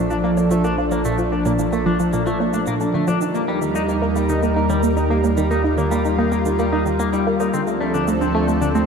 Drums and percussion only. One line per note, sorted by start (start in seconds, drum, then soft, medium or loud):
0.10 shaker soft
0.37 low woodblock medium
0.37 shaker medium
0.51 shaker medium
0.64 shaker soft
0.91 low woodblock medium
0.91 shaker soft
1.05 shaker medium
1.18 shaker soft
1.45 low woodblock medium
1.45 shaker soft
1.59 shaker medium
1.73 shaker soft
2.00 shaker soft
2.13 shaker medium
2.27 shaker soft
2.40 low woodblock medium
2.53 shaker soft
2.67 shaker medium
2.80 shaker soft
3.08 low woodblock soft
3.08 shaker soft
3.21 shaker medium
3.35 shaker soft
3.62 shaker soft
3.75 shaker medium
3.89 shaker soft
4.16 shaker soft
4.29 shaker medium
4.43 shaker soft
4.70 low woodblock medium
4.70 shaker soft
4.83 shaker medium
4.97 shaker soft
5.24 low woodblock soft
5.24 shaker soft
5.37 shaker medium
5.51 shaker soft
5.78 low woodblock medium
5.78 shaker soft
5.92 shaker medium
6.05 shaker soft
6.32 shaker soft
6.45 shaker medium
6.59 shaker soft
6.86 shaker soft
7.00 shaker medium
7.13 shaker soft
7.40 low woodblock soft
7.40 shaker soft
7.54 shaker medium
7.67 shaker soft
7.94 shaker soft
8.08 shaker medium
8.21 shaker soft
8.48 shaker soft
8.62 shaker medium
8.75 shaker soft